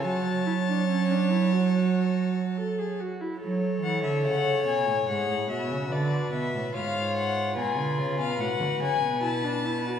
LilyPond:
<<
  \new Staff \with { instrumentName = "Violin" } { \time 4/4 \key fis \minor \tempo 4 = 72 a''2.~ a''8 r8 | r8 fis''16 e''16 fis''8 gis''8 fis''8 e''8 d''8 e''8 | f''8 fis''8 aes''8. f''16 fis''8 gis''8 a''4 | }
  \new Staff \with { instrumentName = "Violin" } { \time 4/4 \key fis \minor cis''2.~ cis''8 r8 | cis''2. b'4 | cis''4 ces''2. | }
  \new Staff \with { instrumentName = "Viola" } { \time 4/4 \key fis \minor fis'8 e'16 d'16 cis'16 d'16 e'16 fis'4~ fis'16 a'16 gis'16 fis'16 e'16 | a'2 gis'8 fis'4. | f'4 f'4 fis'4 e'16 d'16 e'16 fis'16 | }
  \new Staff \with { instrumentName = "Cello" } { \clef bass \time 4/4 \key fis \minor fis2.~ fis8 r8 | fis8 e16 d16 cis8 b,16 a,16 gis,16 a,16 b,16 cis16 d8 b,16 a,16 | aes,4 ces16 d16 cis16 ces16 a,16 d16 cis16 b,4~ b,16 | }
>>